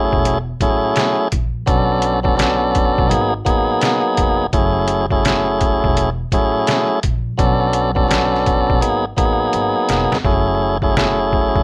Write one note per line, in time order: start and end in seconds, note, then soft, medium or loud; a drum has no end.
0.00 0.38 F#3 medium
0.00 0.38 A3 medium
0.00 0.39 C#4 medium
0.00 0.39 E4 medium
0.00 0.39 G#4 loud
0.13 0.52 E1 medium
0.13 kick medium
0.25 closed hi-hat medium
0.61 0.89 A1 medium
0.61 1.28 F#3 medium
0.61 1.28 A3 medium
0.61 1.28 C#4 medium
0.61 1.28 E4 medium
0.61 1.29 G#4 loud
0.61 kick medium
0.61 closed hi-hat medium
0.96 snare loud
0.96 closed hi-hat medium
1.32 1.61 A#1 medium
1.32 kick medium
1.32 closed hi-hat medium
1.66 2.93 B1 loud
1.66 2.19 F#3 medium
1.66 2.20 B3 medium
1.66 2.20 C#4 medium
1.66 2.20 D4 medium
1.66 2.20 A4 loud
1.66 kick loud
1.66 closed hi-hat medium
2.02 closed hi-hat medium
2.23 2.35 F#3 medium
2.23 2.36 B3 medium
2.23 2.36 C#4 medium
2.23 2.36 D4 medium
2.23 2.37 A4 loud
2.23 kick medium
2.36 3.07 F#3 loud
2.36 3.08 B3 medium
2.36 3.09 C#4 medium
2.36 3.09 D4 medium
2.36 3.10 A4 loud
2.36 snare loud
2.36 closed hi-hat loud
2.75 kick medium
2.75 closed hi-hat medium
2.98 3.09 B1 medium
2.98 kick medium
3.09 3.39 G#1 loud
3.09 3.33 F#3 loud
3.09 3.34 A#3 medium
3.09 3.34 B3 medium
3.09 3.34 D#4 medium
3.09 3.34 G#4 loud
3.09 closed hi-hat medium
3.45 3.75 A1 medium
3.45 4.46 F#3 medium
3.45 4.46 A#3 medium
3.45 4.46 B3 medium
3.45 4.47 D#4 medium
3.45 4.47 G#4 loud
3.45 kick medium
3.45 closed hi-hat medium
3.81 snare loud
3.81 closed hi-hat medium
4.17 4.47 F1 medium
4.17 kick medium
4.17 closed hi-hat medium
4.53 5.79 F#1 loud
4.53 5.06 F#3 medium
4.53 5.06 A3 medium
4.53 5.06 C#4 medium
4.53 5.06 E4 medium
4.53 5.06 G#4 medium
4.53 kick loud
4.53 closed hi-hat medium
4.88 closed hi-hat medium
5.11 5.24 F#3 medium
5.11 5.24 A3 medium
5.11 5.25 C#4 medium
5.11 5.25 E4 medium
5.11 5.25 G#4 loud
5.11 kick medium
5.25 6.10 F#3 medium
5.25 6.10 A3 medium
5.25 6.10 C#4 medium
5.25 6.10 E4 medium
5.25 6.10 G#4 loud
5.25 snare loud
5.25 closed hi-hat medium
5.61 kick medium
5.61 closed hi-hat medium
5.84 6.23 E1 loud
5.84 kick medium
5.97 closed hi-hat medium
6.32 6.61 A1 medium
6.32 6.99 F#3 medium
6.32 6.99 A3 medium
6.32 7.00 C#4 medium
6.32 7.00 E4 medium
6.32 7.00 G#4 loud
6.32 kick medium
6.32 closed hi-hat medium
6.67 snare loud
6.67 closed hi-hat medium
7.03 7.32 A#1 medium
7.03 kick medium
7.03 closed hi-hat medium
7.37 8.64 B1 loud
7.37 7.91 F#3 medium
7.37 7.91 B3 medium
7.37 7.91 C#4 medium
7.37 7.91 D4 medium
7.37 7.92 A4 loud
7.37 kick loud
7.37 closed hi-hat medium
7.73 closed hi-hat medium
7.95 8.07 F#3 medium
7.95 8.07 B3 medium
7.95 8.08 C#4 medium
7.95 8.08 D4 medium
7.95 8.08 A4 loud
7.95 kick medium
8.08 8.79 F#3 loud
8.08 8.80 B3 medium
8.08 8.81 C#4 medium
8.08 8.81 D4 medium
8.08 8.81 A4 loud
8.08 snare loud
8.08 closed hi-hat loud
8.34 snare soft
8.46 kick medium
8.46 closed hi-hat medium
8.70 8.82 B1 medium
8.70 kick medium
8.80 9.11 G#1 loud
8.80 9.05 F#3 loud
8.80 9.05 A#3 medium
8.80 9.05 B3 medium
8.80 9.05 D#4 medium
8.80 9.06 G#4 loud
8.80 closed hi-hat medium
9.17 9.46 A1 medium
9.17 10.18 F#3 medium
9.17 10.18 A#3 medium
9.17 10.18 B3 medium
9.17 10.18 D#4 medium
9.17 10.18 G#4 loud
9.17 kick medium
9.17 closed hi-hat medium
9.53 9.71 G#1 medium
9.53 closed hi-hat medium
9.89 10.07 E1 medium
9.89 snare medium
9.89 closed hi-hat medium
10.12 10.22 F1 medium
10.12 snare medium
10.24 11.50 F#1 loud
10.24 10.77 F#3 medium
10.24 10.77 A3 medium
10.24 10.78 C#4 medium
10.24 10.78 E4 medium
10.24 10.78 G#4 medium
10.24 kick loud
10.82 10.95 F#3 medium
10.82 10.96 A3 medium
10.82 10.96 C#4 medium
10.82 10.96 E4 medium
10.82 10.97 G#4 loud
10.82 kick medium
10.96 11.63 F#3 medium
10.96 11.63 A3 medium
10.96 11.63 C#4 medium
10.96 11.63 E4 medium
10.96 11.63 G#4 loud
10.96 snare loud
11.33 kick medium
11.55 11.63 E1 medium
11.55 kick medium